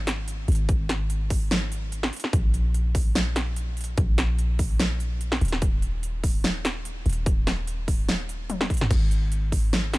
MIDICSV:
0, 0, Header, 1, 3, 480
1, 0, Start_track
1, 0, Tempo, 410959
1, 804, Time_signature, 4, 2, 24, 8
1, 11659, End_track
2, 0, Start_track
2, 0, Title_t, "808-style bass"
2, 0, Program_c, 0, 38
2, 0, Note_on_c, 0, 32, 90
2, 541, Note_off_c, 0, 32, 0
2, 563, Note_on_c, 0, 32, 90
2, 2461, Note_off_c, 0, 32, 0
2, 2723, Note_on_c, 0, 34, 88
2, 4622, Note_off_c, 0, 34, 0
2, 4644, Note_on_c, 0, 34, 90
2, 6302, Note_off_c, 0, 34, 0
2, 6323, Note_on_c, 0, 27, 90
2, 8221, Note_off_c, 0, 27, 0
2, 8243, Note_on_c, 0, 27, 89
2, 10142, Note_off_c, 0, 27, 0
2, 10403, Note_on_c, 0, 32, 86
2, 11659, Note_off_c, 0, 32, 0
2, 11659, End_track
3, 0, Start_track
3, 0, Title_t, "Drums"
3, 83, Note_on_c, 9, 40, 77
3, 83, Note_on_c, 9, 42, 71
3, 199, Note_off_c, 9, 40, 0
3, 199, Note_off_c, 9, 42, 0
3, 323, Note_on_c, 9, 42, 81
3, 440, Note_off_c, 9, 42, 0
3, 563, Note_on_c, 9, 42, 53
3, 606, Note_off_c, 9, 42, 0
3, 606, Note_on_c, 9, 42, 70
3, 642, Note_off_c, 9, 42, 0
3, 642, Note_on_c, 9, 42, 87
3, 759, Note_off_c, 9, 42, 0
3, 803, Note_on_c, 9, 36, 125
3, 803, Note_on_c, 9, 42, 82
3, 919, Note_off_c, 9, 42, 0
3, 920, Note_off_c, 9, 36, 0
3, 1043, Note_on_c, 9, 40, 80
3, 1043, Note_on_c, 9, 42, 68
3, 1159, Note_off_c, 9, 40, 0
3, 1159, Note_off_c, 9, 42, 0
3, 1283, Note_on_c, 9, 42, 80
3, 1400, Note_off_c, 9, 42, 0
3, 1523, Note_on_c, 9, 36, 66
3, 1523, Note_on_c, 9, 46, 86
3, 1640, Note_off_c, 9, 36, 0
3, 1640, Note_off_c, 9, 46, 0
3, 1765, Note_on_c, 9, 38, 127
3, 1765, Note_on_c, 9, 42, 82
3, 1882, Note_off_c, 9, 38, 0
3, 1882, Note_off_c, 9, 42, 0
3, 2006, Note_on_c, 9, 42, 67
3, 2123, Note_off_c, 9, 42, 0
3, 2245, Note_on_c, 9, 42, 78
3, 2361, Note_off_c, 9, 42, 0
3, 2374, Note_on_c, 9, 40, 76
3, 2486, Note_on_c, 9, 42, 49
3, 2491, Note_off_c, 9, 40, 0
3, 2529, Note_off_c, 9, 42, 0
3, 2529, Note_on_c, 9, 42, 66
3, 2566, Note_off_c, 9, 42, 0
3, 2566, Note_on_c, 9, 42, 84
3, 2616, Note_on_c, 9, 40, 63
3, 2683, Note_off_c, 9, 42, 0
3, 2723, Note_on_c, 9, 36, 122
3, 2724, Note_on_c, 9, 42, 78
3, 2733, Note_off_c, 9, 40, 0
3, 2840, Note_off_c, 9, 36, 0
3, 2841, Note_off_c, 9, 42, 0
3, 2965, Note_on_c, 9, 42, 66
3, 3082, Note_off_c, 9, 42, 0
3, 3205, Note_on_c, 9, 42, 78
3, 3322, Note_off_c, 9, 42, 0
3, 3443, Note_on_c, 9, 36, 64
3, 3446, Note_on_c, 9, 46, 89
3, 3560, Note_off_c, 9, 36, 0
3, 3562, Note_off_c, 9, 46, 0
3, 3684, Note_on_c, 9, 38, 124
3, 3684, Note_on_c, 9, 42, 80
3, 3800, Note_off_c, 9, 38, 0
3, 3800, Note_off_c, 9, 42, 0
3, 3923, Note_on_c, 9, 40, 81
3, 3923, Note_on_c, 9, 42, 64
3, 4040, Note_off_c, 9, 40, 0
3, 4040, Note_off_c, 9, 42, 0
3, 4163, Note_on_c, 9, 42, 77
3, 4280, Note_off_c, 9, 42, 0
3, 4402, Note_on_c, 9, 42, 47
3, 4446, Note_off_c, 9, 42, 0
3, 4446, Note_on_c, 9, 42, 65
3, 4483, Note_off_c, 9, 42, 0
3, 4483, Note_on_c, 9, 42, 78
3, 4600, Note_off_c, 9, 42, 0
3, 4642, Note_on_c, 9, 42, 78
3, 4643, Note_on_c, 9, 36, 116
3, 4759, Note_off_c, 9, 42, 0
3, 4760, Note_off_c, 9, 36, 0
3, 4882, Note_on_c, 9, 40, 86
3, 4882, Note_on_c, 9, 42, 68
3, 4999, Note_off_c, 9, 40, 0
3, 4999, Note_off_c, 9, 42, 0
3, 5122, Note_on_c, 9, 42, 78
3, 5239, Note_off_c, 9, 42, 0
3, 5361, Note_on_c, 9, 46, 92
3, 5363, Note_on_c, 9, 36, 61
3, 5478, Note_off_c, 9, 46, 0
3, 5480, Note_off_c, 9, 36, 0
3, 5601, Note_on_c, 9, 38, 119
3, 5601, Note_on_c, 9, 42, 79
3, 5718, Note_off_c, 9, 38, 0
3, 5718, Note_off_c, 9, 42, 0
3, 5842, Note_on_c, 9, 42, 63
3, 5959, Note_off_c, 9, 42, 0
3, 6083, Note_on_c, 9, 42, 76
3, 6199, Note_off_c, 9, 42, 0
3, 6211, Note_on_c, 9, 40, 84
3, 6323, Note_on_c, 9, 42, 50
3, 6328, Note_off_c, 9, 40, 0
3, 6365, Note_off_c, 9, 42, 0
3, 6365, Note_on_c, 9, 42, 66
3, 6403, Note_off_c, 9, 42, 0
3, 6403, Note_on_c, 9, 42, 78
3, 6452, Note_on_c, 9, 40, 69
3, 6520, Note_off_c, 9, 42, 0
3, 6562, Note_on_c, 9, 42, 81
3, 6563, Note_on_c, 9, 36, 113
3, 6569, Note_off_c, 9, 40, 0
3, 6678, Note_off_c, 9, 42, 0
3, 6680, Note_off_c, 9, 36, 0
3, 6802, Note_on_c, 9, 42, 68
3, 6919, Note_off_c, 9, 42, 0
3, 7044, Note_on_c, 9, 42, 78
3, 7161, Note_off_c, 9, 42, 0
3, 7283, Note_on_c, 9, 36, 61
3, 7284, Note_on_c, 9, 46, 96
3, 7400, Note_off_c, 9, 36, 0
3, 7401, Note_off_c, 9, 46, 0
3, 7524, Note_on_c, 9, 38, 117
3, 7524, Note_on_c, 9, 42, 81
3, 7640, Note_off_c, 9, 38, 0
3, 7640, Note_off_c, 9, 42, 0
3, 7765, Note_on_c, 9, 40, 85
3, 7765, Note_on_c, 9, 42, 67
3, 7881, Note_off_c, 9, 40, 0
3, 7881, Note_off_c, 9, 42, 0
3, 8003, Note_on_c, 9, 42, 76
3, 8120, Note_off_c, 9, 42, 0
3, 8242, Note_on_c, 9, 42, 49
3, 8287, Note_off_c, 9, 42, 0
3, 8287, Note_on_c, 9, 42, 67
3, 8323, Note_off_c, 9, 42, 0
3, 8323, Note_on_c, 9, 42, 81
3, 8440, Note_off_c, 9, 42, 0
3, 8482, Note_on_c, 9, 36, 116
3, 8483, Note_on_c, 9, 42, 85
3, 8599, Note_off_c, 9, 36, 0
3, 8600, Note_off_c, 9, 42, 0
3, 8725, Note_on_c, 9, 38, 62
3, 8725, Note_on_c, 9, 40, 85
3, 8725, Note_on_c, 9, 42, 72
3, 8842, Note_off_c, 9, 38, 0
3, 8842, Note_off_c, 9, 40, 0
3, 8842, Note_off_c, 9, 42, 0
3, 8964, Note_on_c, 9, 42, 83
3, 9081, Note_off_c, 9, 42, 0
3, 9202, Note_on_c, 9, 36, 61
3, 9204, Note_on_c, 9, 46, 96
3, 9319, Note_off_c, 9, 36, 0
3, 9321, Note_off_c, 9, 46, 0
3, 9444, Note_on_c, 9, 38, 115
3, 9444, Note_on_c, 9, 42, 82
3, 9561, Note_off_c, 9, 38, 0
3, 9561, Note_off_c, 9, 42, 0
3, 9685, Note_on_c, 9, 42, 66
3, 9801, Note_off_c, 9, 42, 0
3, 9923, Note_on_c, 9, 42, 82
3, 9923, Note_on_c, 9, 48, 62
3, 10040, Note_off_c, 9, 42, 0
3, 10040, Note_off_c, 9, 48, 0
3, 10053, Note_on_c, 9, 40, 83
3, 10053, Note_on_c, 9, 48, 66
3, 10162, Note_on_c, 9, 36, 60
3, 10165, Note_on_c, 9, 42, 51
3, 10169, Note_off_c, 9, 40, 0
3, 10169, Note_off_c, 9, 48, 0
3, 10207, Note_off_c, 9, 42, 0
3, 10207, Note_on_c, 9, 42, 67
3, 10243, Note_off_c, 9, 42, 0
3, 10243, Note_on_c, 9, 42, 83
3, 10279, Note_off_c, 9, 36, 0
3, 10294, Note_on_c, 9, 40, 66
3, 10294, Note_on_c, 9, 45, 90
3, 10360, Note_off_c, 9, 42, 0
3, 10402, Note_on_c, 9, 36, 119
3, 10405, Note_on_c, 9, 42, 88
3, 10405, Note_on_c, 9, 49, 79
3, 10411, Note_off_c, 9, 40, 0
3, 10411, Note_off_c, 9, 45, 0
3, 10519, Note_off_c, 9, 36, 0
3, 10522, Note_off_c, 9, 42, 0
3, 10522, Note_off_c, 9, 49, 0
3, 10643, Note_on_c, 9, 42, 72
3, 10759, Note_off_c, 9, 42, 0
3, 10883, Note_on_c, 9, 42, 85
3, 11000, Note_off_c, 9, 42, 0
3, 11122, Note_on_c, 9, 36, 62
3, 11125, Note_on_c, 9, 46, 96
3, 11239, Note_off_c, 9, 36, 0
3, 11242, Note_off_c, 9, 46, 0
3, 11365, Note_on_c, 9, 38, 121
3, 11365, Note_on_c, 9, 42, 84
3, 11482, Note_off_c, 9, 38, 0
3, 11482, Note_off_c, 9, 42, 0
3, 11604, Note_on_c, 9, 40, 81
3, 11604, Note_on_c, 9, 42, 73
3, 11659, Note_off_c, 9, 40, 0
3, 11659, Note_off_c, 9, 42, 0
3, 11659, End_track
0, 0, End_of_file